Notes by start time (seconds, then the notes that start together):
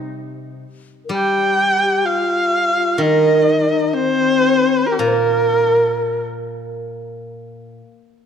Already playing: C3 G3 C4 D#4
1.05 A#4
1.09 G3 G4
1.15 G5
1.81 G4
2.05 F4 F5
2.75 F4
2.98 D#3 D#4 D#5
3.70 D#4
3.93 C4 C5
4.86 A#4
4.92 G4
4.99 A#2 A#4
5.08 C5
5.14 A#4